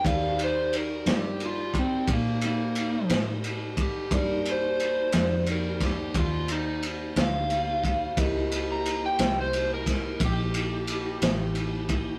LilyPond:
<<
  \new Staff \with { instrumentName = "Electric slide guitar" } { \time 12/8 \key c \dorian \tempo 4. = 59 f''8 c''8 bes'8 g'8 f'8 c'8 bes8 bes4 r4 g'8 | bes'8 c''4. bes'8 g'8 f'8 ees'8 r8 f''4. | r8. ais''8 g''8 c''8 ais'8. g'2. | }
  \new Staff \with { instrumentName = "Tine electric piano" } { \time 12/8 \key c \dorian <ees' g' bes' d''>1. | <ees' g' bes' d''>1. | <e' g' ais' ees''>1. | }
  \new Staff \with { instrumentName = "Tonewheel organ" } { \time 12/8 \key c \dorian <ees' g' bes'>1. | <bes ees' g'>1. | <ais e' g'>1. | }
  \new Staff \with { instrumentName = "Fingered electric bass" } { \clef bass \time 12/8 \key c \dorian ees,4. g,4. bes,4. a,4. | g,4. f,4. ees,4. d,4. | cis,4. c,4. ais,,4. a,,4. | }
  \new DrumStaff \with { instrumentName = "Drums" } \drummode { \time 12/8 <bd cymr>8 cymr8 cymr8 <cymr sn>8 cymr8 <bd cymr>8 <bd cymr>8 cymr8 cymr8 <cymr sn>8 cymr8 <bd cymr>8 | <bd cymr>8 cymr8 cymr8 <cymr sn>8 cymr8 <bd cymr sn>8 <bd cymr>8 cymr8 cymr8 <cymr sn>8 cymr8 <bd cymr>8 | <bd cymr>8 cymr8 cymr8 <cymr sn>8 cymr8 <bd cymr sn>8 <bd cymr>8 cymr8 cymr8 <cymr sn>8 cymr8 <bd cymr>8 | }
>>